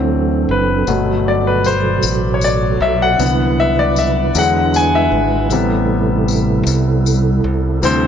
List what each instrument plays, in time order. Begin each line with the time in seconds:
Already playing: fingered electric bass D2, grand piano E3 F#3 C4, tonewheel organ F#3 C4 D4 A4
0.49 fingered electric bass F#1, grand piano B4
0.87 fingered electric bass G1, tonewheel organ B2 F#3 F#4 A4, grand piano B2 F#3 A3, tambourine
1.28 grand piano D5
1.47 grand piano B4
1.64 grand piano C5, tambourine
2.03 fingered electric bass A1, tambourine
2.34 grand piano C#5
2.41 grand piano D5, tambourine
2.80 fingered electric bass B1, grand piano E5
3.02 grand piano F#5
3.18 fingered electric bass C2, tonewheel organ C3 E4 B4, grand piano D3 E3 B3, tambourine
3.60 grand piano E5
3.79 grand piano D5
3.96 grand piano E5, tambourine
4.35 fingered electric bass E2, grand piano D3 F#3 G#3 F#5, tonewheel organ G#3 D4, tambourine
4.74 grand piano G#5, tambourine
4.95 grand piano E5
5.12 fingered electric bass G#1
5.50 fingered electric bass A1, tonewheel organ C3 G3 E4 A4, grand piano C3 G3 B3, tambourine
6.28 tambourine
6.67 fingered electric bass C2, tambourine
7.06 tambourine
7.44 fingered electric bass C2
7.82 fingered electric bass D2, grand piano E3 G3 C4 C5, tonewheel organ D4, tambourine